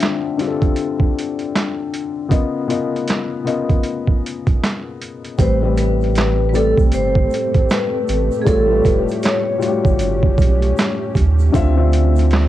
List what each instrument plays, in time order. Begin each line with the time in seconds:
Already playing: felt piano D3 C4 F4 C#5 E5
0.00 snare, clap, closed hi-hat
0.38 felt piano D3 C4 F4 G4, snare, closed hi-hat
0.47 felt piano A4
0.62 kick, closed hi-hat
0.76 closed hi-hat
1.00 kick
1.19 closed hi-hat
1.39 closed hi-hat
1.55 snare, clap, closed hi-hat
1.94 closed hi-hat
2.28 felt piano C#3 B3 F4 A#4 D#5, kick, closed hi-hat
2.67 felt piano C#3 B3 F4 A#4 D#5, closed hi-hat
2.96 closed hi-hat
3.08 snare, clap, closed hi-hat
3.44 felt piano C#3 B3 F4 A#4 D#5, closed hi-hat
3.69 kick, closed hi-hat
3.83 closed hi-hat
4.07 kick
4.26 closed hi-hat
4.47 kick, closed hi-hat
4.64 snare, clap, closed hi-hat
5.02 closed hi-hat
5.25 closed hi-hat
5.38 sub bass A1, felt piano A2 G3 C4 B4, ambient pad A3 C4 G4 A4, vibraphone C5, kick, closed hi-hat, shaker
5.62 felt piano A2 G3 C4 B4
5.77 vibraphone B4, closed hi-hat, shaker
6.01 closed hi-hat, shaker
6.15 snare, clap, closed hi-hat, shaker
6.49 felt piano A2, vibraphone B4
6.53 felt piano G3 C4 D5, vibraphone A4, closed hi-hat, shaker
6.77 sub bass B1, kick, shaker
6.92 sub bass G1, vibraphone C5, closed hi-hat, shaker
7.15 kick
7.30 closed hi-hat, shaker
7.54 kick, closed hi-hat
7.70 vibraphone B4, snare, clap, closed hi-hat, shaker
8.08 sub bass A1, closed hi-hat, shaker
8.31 shaker
8.41 felt piano A2 G3, vibraphone G#4
8.46 sub bass A1, ambient pad C#4, felt piano F4 C#5, vibraphone A4, kick, closed hi-hat, shaker
8.67 felt piano A2 G3 F4 B4
8.77 felt piano C#5
8.84 sub bass F1, vibraphone B4, kick, closed hi-hat, shaker
9.08 closed hi-hat, shaker
9.23 vibraphone C#5, snare, clap, closed hi-hat, shaker
9.58 felt piano A2 G3 F4 F#4, shaker
9.63 closed hi-hat
9.68 felt piano G4
9.85 sub bass G1, kick, shaker
9.99 closed hi-hat, shaker
10.23 kick
10.38 sub bass B1, kick, closed hi-hat, shaker
10.62 closed hi-hat
10.77 snare, clap, closed hi-hat, shaker
11.15 sub bass D#2, kick, closed hi-hat, shaker
11.39 shaker
11.52 sub bass D2, felt piano D3 C4 F4 E5, ambient pad D3 C4 F4 E5, kick, closed hi-hat, shaker
11.76 felt piano D3 C4 F4 E5
11.92 closed hi-hat, shaker
12.16 closed hi-hat, shaker
12.30 snare, closed hi-hat, shaker
12.34 clap